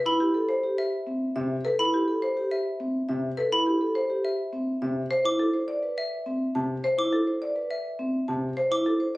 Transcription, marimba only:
0.00 0.10 B4 medium
0.20 0.39 G4 medium
0.49 0.68 C5 medium
1.36 1.55 E5 medium
1.65 1.84 B4 medium
1.94 2.13 G4 medium
2.22 2.41 C5 medium
3.09 3.28 E5 medium
3.37 3.56 B4 medium
3.66 3.85 G4 soft
3.95 4.14 C5 medium
4.82 5.01 E5 soft
5.11 5.30 C5 medium
5.39 5.58 A4 soft
5.68 5.87 D5 medium
6.55 6.74 A5 soft
6.84 7.03 C5 medium
7.13 7.32 A4 soft
7.42 7.61 D5 medium
8.28 8.47 A5 soft
8.57 8.76 C5 medium
8.86 9.05 A4 soft

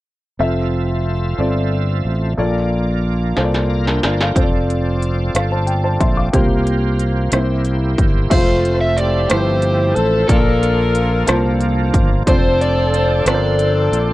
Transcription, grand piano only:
0.39 1.11 C4 medium
0.39 1.11 F4 medium
0.39 1.12 A4 soft
0.39 1.12 E5 medium
1.38 2.10 C4 medium
1.38 2.10 F4 soft
1.38 2.10 A4 soft
1.38 2.11 D5 medium
2.37 3.33 A#2 soft
2.37 3.09 A#3 medium
2.37 3.09 F4 medium
2.37 3.09 A4 medium
2.37 3.10 D5 medium
3.36 4.08 A#3 medium
3.36 3.70 F4 medium
3.36 3.70 A4 medium
3.36 3.44 C5 soft
3.44 3.73 D5 medium
3.87 4.03 D4 soft
3.87 4.02 A#4 soft
4.05 4.20 F4 soft
4.05 4.19 D5 medium
4.21 4.35 A4 soft
4.21 4.51 F5 soft
4.35 5.07 C4 medium
4.35 5.07 F4 medium
4.35 5.08 A4 medium
4.35 4.43 C5 medium
4.43 5.11 D5 medium
5.35 5.51 A4 soft
5.35 5.50 F5 soft
5.52 5.67 C5 soft
5.52 5.67 A5 soft
5.67 5.83 G5 medium
5.84 6.00 C5 soft
5.84 5.99 A5 medium
6.00 6.16 E5 soft
6.00 6.16 C6 soft
6.17 6.49 F5 soft
6.17 6.48 D6 soft
6.33 7.28 C3 soft
6.33 7.05 A#3 medium
6.33 7.05 F4 medium
6.33 7.05 G4 medium
6.33 7.06 C5 medium
7.32 8.27 C3 medium
7.32 8.04 A#3 medium
7.32 8.04 E4 medium
7.32 8.04 G4 medium
7.32 8.05 C5 medium
8.30 8.37 G#3 soft
8.30 9.03 F4 medium
8.30 9.03 C5 medium
8.30 9.03 E5 medium
8.37 9.06 A3 medium
9.29 10.02 F3 soft
9.29 10.01 A3 medium
9.29 10.02 E4 medium
9.29 9.37 B4 soft
9.37 10.05 C5 medium
10.28 11.24 A#2 soft
10.28 11.00 A#3 medium
10.28 11.00 F4 medium
10.28 11.01 D5 medium
10.28 11.01 A5 medium
11.27 11.99 A#3 medium
11.27 11.99 F4 medium
11.27 12.00 C5 medium
11.27 12.00 A5 medium
12.26 12.98 C4 medium
12.26 12.99 F4 medium
12.26 12.99 A4 medium
12.26 12.99 D5 medium
13.26 13.98 C4 medium
13.26 13.98 F4 soft
13.26 13.98 A4 medium
13.26 13.33 A#4 medium
13.34 14.02 C5 medium

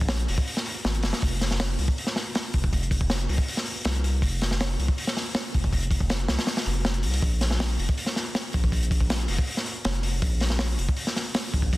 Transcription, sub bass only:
0.00 0.27 A#1 loud
0.28 0.37 F1 medium
0.85 1.05 G#1 medium
1.03 1.12 F1 medium
1.22 1.77 F1 loud
1.78 1.87 C2 medium
2.54 2.71 F1 loud
2.73 3.27 F1 loud
3.29 3.37 C2 medium
3.85 4.21 C2 loud
4.22 4.77 F1 loud
4.79 4.88 C2 medium
5.54 5.71 F1 loud
5.73 6.27 F1 loud
6.29 6.37 C2 medium
6.66 7.05 F1 medium
7.04 7.21 C2 medium
7.23 7.77 A#1 loud
7.79 7.87 F1 medium
8.54 8.71 A#1 loud
8.72 9.27 A#1 loud
9.29 9.37 F1 medium
9.85 10.21 F1 loud
10.22 10.77 A#1 loud
10.79 10.87 F1 medium
11.54 11.71 A#1 loud
11.73 11.77 A#1 loud

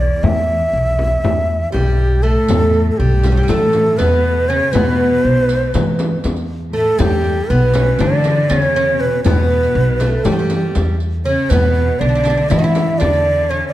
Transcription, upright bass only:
0.23 0.63 E2 medium
0.73 1.13 B1 medium
1.24 1.63 E2 medium
1.74 2.34 B1 medium
2.49 2.89 E2 medium
3.00 3.39 B1 medium
3.49 3.89 E3 loud
4.00 4.59 E2 medium
4.74 5.14 E2 medium
5.25 5.64 B1 medium
5.75 6.14 E3 loud
6.25 6.84 E2 medium
7.00 7.39 E2 medium
7.50 7.90 B1 medium
8.00 8.40 E3 loud
8.50 9.10 E2 medium
9.25 9.65 E2 medium
9.75 10.15 B1 loud
10.25 10.65 E3 loud
10.76 11.35 E2 medium
11.51 11.90 E2 medium
12.01 12.41 B1 medium
12.51 12.91 E3 medium
13.01 13.61 E2 medium

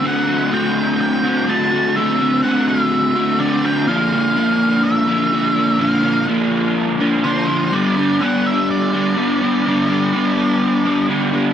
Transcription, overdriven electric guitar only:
0.03 0.51 D3 loud
0.03 0.30 A3 loud
0.03 0.28 C4 loud
0.03 0.26 F#4 loud
0.27 0.52 A3 medium
0.27 0.53 C4 medium
0.27 0.52 F#4 medium
0.51 1.46 D3 medium
0.51 1.26 A3 loud
0.51 1.24 C4 loud
0.51 1.22 F#4 loud
1.24 1.48 A3 medium
1.24 1.48 C4 medium
1.24 1.49 F#4 medium
1.47 1.94 D3 medium
1.47 1.74 A3 medium
1.47 1.72 C4 medium
1.47 1.70 F#4 medium
1.71 1.96 A3 medium
1.71 1.96 C4 medium
1.71 1.97 F#4 medium
1.95 2.42 D3 medium
1.95 2.21 A3 medium
1.95 2.20 C4 loud
1.95 2.18 F#4 loud
2.19 2.44 A3 medium
2.19 2.43 C4 medium
2.19 2.44 F#4 medium
2.43 3.37 D3 loud
2.43 3.17 A3 medium
2.43 3.15 C4 loud
2.43 3.14 F#4 loud
3.15 3.39 A3 medium
3.15 3.39 C4 medium
3.15 3.40 F#4 medium
3.39 3.86 D3 medium
3.39 3.65 A3 medium
3.39 3.63 C4 medium
3.39 3.62 F#4 medium
3.63 3.88 A3 medium
3.63 3.87 C4 medium
3.63 3.86 F#4 medium
3.87 4.35 A#2 medium
3.87 4.35 D3 medium
3.87 4.14 F3 medium
3.87 4.13 A#3 medium
3.87 4.12 D4 loud
4.12 4.36 F3 medium
4.12 4.37 A#3 medium
4.12 4.37 D4 medium
4.35 5.32 A#2 loud
4.35 5.31 D3 loud
4.35 5.09 F3 loud
4.35 5.07 A#3 loud
4.35 5.07 D4 loud
5.07 5.31 F3 medium
5.07 5.32 A#3 medium
5.07 5.34 D4 medium
5.32 5.79 D3 medium
5.32 5.57 F3 medium
5.32 5.56 A#3 medium
5.32 5.55 D4 medium
5.55 5.79 F3 medium
5.55 5.80 A#3 medium
5.55 5.81 D4 medium
5.79 6.26 A#2 medium
5.79 6.27 D3 medium
5.79 6.05 F3 loud
5.79 6.03 A#3 medium
5.79 6.03 D4 loud
6.03 6.27 F3 medium
6.03 6.28 A#3 medium
6.03 6.29 D4 medium
6.27 7.24 A#2 loud
6.27 7.23 D3 medium
6.27 7.01 F3 loud
6.27 7.00 A#3 loud
6.27 7.00 D4 loud
7.00 7.24 F3 medium
7.00 7.24 A#3 medium
7.00 7.26 D4 medium
7.24 7.71 D3 medium
7.24 7.50 F3 medium
7.24 7.48 A#3 medium
7.24 7.48 D4 medium
7.48 7.72 F3 medium
7.48 7.72 A#3 medium
7.48 7.74 D4 medium
7.72 8.20 G2 medium
7.72 8.20 D3 loud
7.72 7.98 G3 medium
7.72 7.97 B3 loud
7.72 7.96 D4 loud
7.97 8.21 G3 medium
7.97 8.22 B3 medium
7.97 8.22 D4 medium
8.20 9.17 G2 loud
8.20 9.15 D3 loud
8.20 8.94 G3 loud
8.20 8.93 B3 loud
8.20 8.92 D4 loud
8.93 9.16 G3 medium
8.93 9.17 B3 medium
8.93 9.18 D4 medium
9.16 9.65 D3 medium
9.16 9.43 G3 medium
9.16 9.42 B3 medium
9.16 9.41 D4 medium
9.42 9.66 G3 medium
9.42 9.67 B3 medium
9.42 9.68 D4 medium
9.66 10.12 G2 medium
9.66 10.12 D3 medium
9.66 9.90 G3 loud
9.66 9.89 B3 medium
9.66 9.88 D4 loud
9.89 10.14 G3 medium
9.89 10.14 B3 medium
9.89 10.14 D4 medium
10.13 11.10 G2 medium
10.13 11.07 D3 loud
10.13 10.86 G3 medium
10.13 10.85 B3 loud
10.13 10.84 D4 loud
10.85 11.09 G3 medium
10.85 11.09 B3 medium
10.85 11.10 D4 medium
11.09 11.53 D3 medium
11.09 11.33 G3 medium
11.09 11.32 B3 medium
11.09 11.31 D4 medium
11.32 11.53 G3 medium
11.32 11.53 B3 medium
11.32 11.53 D4 medium

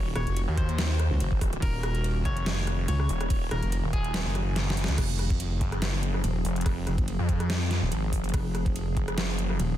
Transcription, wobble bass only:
0.16 0.25 D#1 medium
0.27 0.46 F1 loud
1.11 1.19 C#2 loud
1.62 2.24 D#1 loud
2.88 3.08 C#2 loud
3.51 3.61 D#1 medium
3.63 3.82 F1 medium
4.98 5.59 F1 loud
6.24 6.43 D#1 loud
6.87 6.96 F1 medium
6.98 7.17 F#1 medium
7.82 7.90 D#1 loud
8.34 8.95 F1 loud
9.60 9.78 D#1 loud

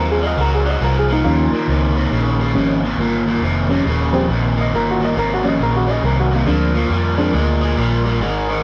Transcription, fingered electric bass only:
0.00 0.36 D#2 medium
0.37 0.80 C#2 medium
0.81 1.23 C2 medium
1.24 1.50 D#2 medium
1.52 muted fingered electric bass stroke soft
1.67 2.10 C#2 medium
2.11 2.53 A#1 medium
2.54 2.97 G#1 medium
2.98 3.40 G1 medium
3.41 3.84 F1 medium
3.85 4.28 D#1 medium
4.29 4.71 A#1 medium
4.72 5.14 G1 medium
5.16 5.58 G#1 medium
5.59 6.02 A#1 medium
6.02 6.45 C2 medium
6.46 6.89 D2 medium
6.89 7.32 F2 medium
7.34 7.76 D2 medium
7.77 8.20 A#1 medium
8.20 8.63 G#1 medium

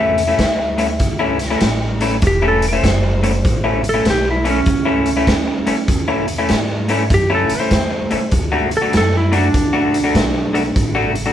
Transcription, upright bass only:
0.00 0.37 E2 medium
0.39 0.98 D2 medium
1.00 1.59 C#2 medium
1.61 2.21 A1 medium
2.22 2.82 E1 medium
2.84 3.43 F#1 medium
3.45 4.04 A1 medium
4.06 4.65 B1 medium
4.67 5.26 C#2 medium
5.27 5.64 D2 medium
5.67 muted upright bass stroke soft
5.88 6.48 E2 medium
6.50 7.09 G#2 medium
7.10 7.47 F#2 medium
7.50 muted upright bass stroke soft
7.71 8.08 E2 medium
8.12 muted upright bass stroke soft
8.32 8.92 D2 medium
8.94 9.53 F#2 medium
9.54 10.13 D2 medium
10.16 10.75 B1 medium
10.76 11.33 A1 medium

